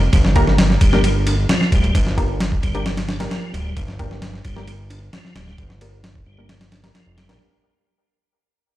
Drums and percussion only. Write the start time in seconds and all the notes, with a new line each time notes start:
0.13 kick, ride
0.25 snare
0.36 kick, ride
0.47 snare
0.58 snare, ride
0.70 snare
0.81 kick, ride
0.93 snare
1.04 ride
1.27 ride
1.49 snare, ride
1.61 snare
1.72 kick, ride
1.84 ride
1.95 kick, ride
2.07 snare
2.18 kick, ride
2.40 snare, ride
2.52 kick
2.63 kick, ride
2.75 ride
2.86 snare, ride
2.97 snare, ride
3.09 snare, ride
3.20 snare, ride
3.31 snare, ride
3.54 ride
3.77 kick, ride
3.88 snare
3.99 kick, ride
4.11 snare
4.22 snare, ride
4.34 snare
4.45 kick, ride
4.57 snare
4.68 ride
4.90 ride
5.13 snare, ride
5.25 snare
5.36 snare, ride
5.47 snare
5.58 kick, ride
5.70 snare
5.81 ride
6.04 snare, ride
6.15 kick
6.49 snare, ride
6.61 snare, ride
6.72 snare, ride
6.84 snare, ride
6.95 snare, ride
7.18 snare, ride
7.29 snare, ride